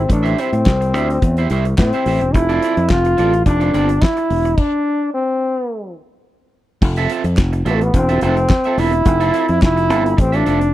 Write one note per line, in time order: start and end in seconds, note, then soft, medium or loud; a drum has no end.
0.00 0.11 C4 medium
0.09 0.33 A1 loud
0.09 0.42 D4 medium
0.09 muted clean electric guitar stroke soft
0.09 kick loud
0.09 closed hi-hat medium
0.23 0.37 E4 medium
0.23 0.37 G4 medium
0.23 0.37 C5 medium
0.23 0.37 E5 medium
0.23 closed hi-hat soft
0.38 1.52 C4 medium
0.38 0.49 E4 medium
0.38 0.50 G4 medium
0.38 0.50 C5 medium
0.38 0.50 E5 medium
0.38 closed hi-hat medium
0.52 0.64 A2 medium
0.52 muted clean electric guitar stroke soft
0.52 closed hi-hat soft
0.66 0.94 C2 loud
0.66 kick loud
0.66 snare loud
0.66 clap medium
0.81 muted clean electric guitar stroke soft
0.81 closed hi-hat soft
0.94 1.17 D2 medium
0.94 1.08 E4 medium
0.94 1.08 G4 medium
0.94 1.09 C5 medium
0.94 1.07 E5 medium
0.94 closed hi-hat medium
1.09 muted clean electric guitar stroke soft
1.09 closed hi-hat soft
1.22 1.46 E2 loud
1.22 muted clean electric guitar stroke soft
1.22 kick loud
1.22 closed hi-hat medium
1.37 1.48 E4 medium
1.37 1.48 G4 medium
1.37 1.48 C5 medium
1.37 1.48 E5 medium
1.37 closed hi-hat soft
1.50 1.74 C2 medium
1.50 1.65 E4 medium
1.50 1.65 G4 medium
1.50 1.65 C5 medium
1.50 1.64 E5 medium
1.50 closed hi-hat medium
1.65 muted clean electric guitar stroke medium
1.65 closed hi-hat soft
1.78 1.91 A2 medium
1.78 2.35 C4 medium
1.78 muted clean electric guitar stroke soft
1.78 kick loud
1.78 snare loud
1.78 clap loud
1.93 2.04 E4 medium
1.93 2.04 G4 medium
1.93 2.04 C5 medium
1.93 2.03 E5 medium
1.93 closed hi-hat soft
2.06 2.18 A1 medium
2.06 2.21 E4 medium
2.06 2.21 G4 medium
2.06 2.21 C5 medium
2.06 2.20 E5 medium
2.06 open hi-hat medium
2.21 2.35 E1 medium
2.21 muted clean electric guitar stroke soft
2.21 closed hi-hat soft
2.34 2.58 F1 loud
2.34 2.92 E4 loud
2.34 muted clean electric guitar stroke soft
2.34 kick loud
2.34 closed hi-hat medium
2.49 2.61 C4 medium
2.49 2.62 F4 medium
2.49 2.62 A4 medium
2.49 2.62 D5 medium
2.49 closed hi-hat soft
2.62 2.74 C4 medium
2.62 2.74 F4 medium
2.62 2.75 A4 medium
2.62 2.75 D5 medium
2.62 closed hi-hat medium
2.77 2.88 F2 medium
2.77 muted clean electric guitar stroke soft
2.77 closed hi-hat soft
2.89 3.14 F1 medium
2.89 3.46 F4 loud
2.89 kick loud
2.89 snare loud
2.89 clap medium
3.05 muted clean electric guitar stroke soft
3.05 closed hi-hat soft
3.17 3.42 A1 medium
3.17 3.32 C4 medium
3.17 3.33 F4 medium
3.17 3.33 A4 medium
3.17 3.33 D5 medium
3.17 closed hi-hat medium
3.33 muted clean electric guitar stroke soft
3.33 closed hi-hat soft
3.46 3.70 F1 loud
3.46 4.03 D4 medium
3.46 muted clean electric guitar stroke soft
3.46 kick medium
3.46 closed hi-hat medium
3.60 3.71 C4 medium
3.60 3.71 F4 medium
3.60 3.71 A4 medium
3.60 3.71 D5 medium
3.60 closed hi-hat soft
3.74 3.98 G1 medium
3.74 3.88 C4 medium
3.74 3.89 F4 medium
3.74 3.89 A4 medium
3.74 3.89 D5 loud
3.74 closed hi-hat medium
3.89 muted clean electric guitar stroke soft
3.89 closed hi-hat medium
4.02 4.60 E4 loud
4.02 muted clean electric guitar stroke soft
4.02 kick loud
4.02 snare loud
4.02 clap medium
4.17 muted clean electric guitar stroke soft
4.17 closed hi-hat soft
4.30 4.54 E1 medium
4.30 open hi-hat medium
4.45 muted clean electric guitar stroke medium
4.45 closed hi-hat soft
4.58 5.13 D4 loud
4.58 kick loud
4.58 crash medium
5.14 5.94 C4 medium
6.82 7.06 F1 loud
6.82 muted clean electric guitar stroke soft
6.82 kick loud
6.82 crash loud
6.96 7.09 C4 medium
6.96 7.10 F4 medium
6.96 7.10 A4 medium
6.96 7.10 E5 loud
6.96 closed hi-hat soft
7.10 7.22 C4 medium
7.10 7.22 F4 medium
7.10 7.22 A4 medium
7.10 7.23 E5 medium
7.10 closed hi-hat medium
7.24 7.36 F2 medium
7.24 muted clean electric guitar stroke medium
7.24 closed hi-hat soft
7.37 7.61 F1 loud
7.37 kick loud
7.37 snare loud
7.37 clap medium
7.53 muted clean electric guitar stroke medium
7.53 closed hi-hat soft
7.65 7.89 A1 medium
7.65 7.80 C4 medium
7.65 7.80 F4 medium
7.65 7.80 A4 medium
7.65 7.80 E5 medium
7.65 closed hi-hat medium
7.70 7.77 B3 medium
7.75 7.85 A3 medium
7.81 7.97 B3 medium
7.81 muted clean electric guitar stroke soft
7.81 closed hi-hat soft
7.94 8.17 E1 loud
7.94 8.22 C4 medium
7.94 muted clean electric guitar stroke soft
7.94 kick loud
7.94 closed hi-hat medium
8.09 8.20 C4 medium
8.09 8.19 F4 medium
8.09 8.19 A4 medium
8.09 8.19 E5 medium
8.09 closed hi-hat soft
8.21 8.46 F1 medium
8.21 8.37 C4 medium
8.21 8.81 C4 medium
8.21 8.37 F4 medium
8.21 8.37 A4 medium
8.21 8.37 E5 loud
8.21 closed hi-hat medium
8.37 muted clean electric guitar stroke soft
8.37 closed hi-hat medium
8.49 muted clean electric guitar stroke soft
8.49 kick loud
8.49 snare loud
8.49 clap medium
8.64 8.76 C4 medium
8.64 8.76 F4 medium
8.64 8.76 A4 medium
8.64 8.75 E5 medium
8.64 closed hi-hat soft
8.77 9.01 E1 medium
8.77 8.92 C4 medium
8.77 9.63 E4 loud
8.77 8.93 F4 medium
8.77 8.93 A4 medium
8.77 8.92 E5 medium
8.77 open hi-hat medium
8.93 muted clean electric guitar stroke soft
8.93 closed hi-hat soft
9.05 9.29 F1 loud
9.05 muted clean electric guitar stroke soft
9.05 kick loud
9.05 closed hi-hat medium
9.20 9.33 C4 medium
9.20 9.33 F4 medium
9.20 9.33 A4 medium
9.20 9.34 E5 medium
9.20 closed hi-hat soft
9.34 9.45 C4 medium
9.34 9.45 F4 medium
9.34 9.46 A4 medium
9.34 9.46 E5 medium
9.34 closed hi-hat medium
9.49 9.60 F2 medium
9.49 muted clean electric guitar stroke soft
9.49 closed hi-hat soft
9.62 9.90 F1 loud
9.62 10.21 E4 loud
9.62 kick loud
9.62 snare loud
9.62 clap medium
9.77 muted clean electric guitar stroke medium
9.77 closed hi-hat soft
9.89 10.13 G1 loud
9.89 10.04 C4 medium
9.89 10.04 F4 medium
9.89 10.03 A4 medium
9.89 10.03 E5 medium
9.89 closed hi-hat medium
10.04 muted clean electric guitar stroke medium
10.04 closed hi-hat medium
10.17 10.42 A1 loud
10.17 10.38 C4 loud
10.17 muted clean electric guitar stroke soft
10.17 kick loud
10.17 closed hi-hat medium
10.32 10.44 C4 soft
10.32 10.74 D4 loud
10.32 10.43 F4 medium
10.32 10.43 A4 medium
10.32 10.43 E5 medium
10.32 closed hi-hat soft
10.46 10.70 F1 medium
10.46 10.61 C4 medium
10.46 10.59 F4 medium
10.46 10.60 A4 medium
10.46 10.58 E5 medium
10.46 closed hi-hat medium
10.60 muted clean electric guitar stroke medium
10.60 closed hi-hat soft